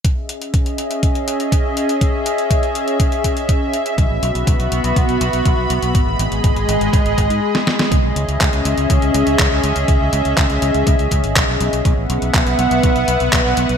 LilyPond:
<<
  \new Staff \with { instrumentName = "Analog synth pad" } { \time 4/4 \key cis \minor \tempo 4 = 122 << { e''1~ | e''1 | b''1~ | b''1 |
e''1~ | e''1 | fis''1 | } \\ { <cis' gis' dis''>1~ | <cis' gis' dis''>1 | <b fis'>1 | <gis gis' dis''>1 |
<cis' gis' dis''>1~ | <cis' gis' dis''>1 | <b b' e''>1 | } >> }
  \new Staff \with { instrumentName = "Fingered electric bass" } { \clef bass \time 4/4 \key cis \minor r1 | r1 | b,,16 a,,16 b,,16 b,,16 b,,16 b,,16 b,,16 b,,16 b,,16 b,,16 b,,16 b,,16 b,,16 b,,16 b,,16 b,,16 | gis,,16 gis,,16 gis,,16 gis,,16 gis,,16 gis,,16 gis,,16 gis,,16 gis,,16 gis,,16 gis,,16 gis,16 r4 |
cis,16 b,,16 cis,16 cis,16 cis,16 cis,16 cis,16 cis,16 cis,16 cis,16 cis,16 cis,16 cis,16 cis,16 cis,16 cis,16 | cis,16 cis,16 cis,16 cis,16 cis,16 cis,16 cis,16 cis,16 cis,16 cis,16 cis,16 gis,,16 b,,16 b,,16 b,,16 b,,16 | b,,16 a,,16 b,,16 b,,16 b,,16 b,,16 b,,16 b,,16 b,,16 b,,16 b,,16 b,,16 b,,16 b,,16 b,,16 b,,16 | }
  \new DrumStaff \with { instrumentName = "Drums" } \drummode { \time 4/4 <hh bd>8 hh16 hh16 <hh bd>16 hh16 hh16 hh16 <hh bd>16 hh16 hh16 hh16 <hh bd>8 hh16 hh16 | <hh bd>8 hh16 hh16 <hh bd>16 hh16 hh16 hh16 <hh bd>16 hh16 <hh bd>16 hh16 <hh bd>8 hh16 hh16 | <hh bd>8 hh16 hh16 <hh bd>16 hh16 hh16 hh16 <hh bd>16 hh16 hh16 hh16 <hh bd>8 hh16 hh16 | <hh bd>8 hh16 hh16 <hh bd>16 hh16 hh16 hh16 <hh bd>16 hh16 <hh bd>16 hh16 r16 sn16 sn16 sn16 |
<hh bd>8 hh16 hh16 <hc hh bd>16 hh16 hh16 hh16 <hh bd>16 hh16 hh16 hh16 <hc hh bd>8 hh16 hh16 | <hh bd>8 hh16 hh16 <hc hh bd>16 hh16 hh16 hh16 <hh bd>16 hh16 <hh bd>16 hh16 <hc hh bd>8 hh16 hh16 | <hh bd>8 hh16 hh16 <hc hh bd>16 hh16 hh16 hh16 <hh bd>16 hh16 hh16 hh16 <hc hh bd>8 hh16 hh16 | }
>>